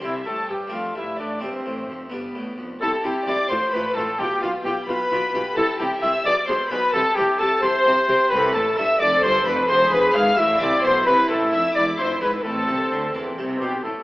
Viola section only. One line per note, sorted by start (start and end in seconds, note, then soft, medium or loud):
0.00 0.70 G3 medium
0.73 1.42 A3 soft
1.42 2.12 C4 soft
2.12 2.60 B3 medium
2.82 2.90 E4 medium
3.04 3.12 E4 medium
3.28 3.36 E4 medium
3.51 3.59 F4 medium
3.74 3.82 F4 medium
3.97 4.05 F4 medium
4.20 4.28 F4 medium
4.42 4.50 F4 medium
4.66 4.74 F4 medium
4.88 4.96 F4 medium
5.11 5.19 F4 medium
5.34 5.42 F4 medium
5.57 5.65 E4 medium
5.80 5.88 E4 medium
6.02 6.10 E4 medium
6.25 6.33 G#4 medium
6.48 6.56 G#4 medium
6.71 6.79 G#4 medium
6.94 7.02 G4 medium
7.17 7.25 G4 medium
7.40 7.48 G4 medium
7.62 7.70 G4 medium
7.86 7.94 G4 medium
8.09 8.17 G4 medium
8.32 8.96 A4 loud
9.01 9.68 A4 medium
9.69 10.36 G#4 loud
10.37 11.05 E4 medium
11.06 11.74 E4 loud
11.75 12.43 E4 medium
12.45 13.62 C4 medium
13.84 13.92 E4 soft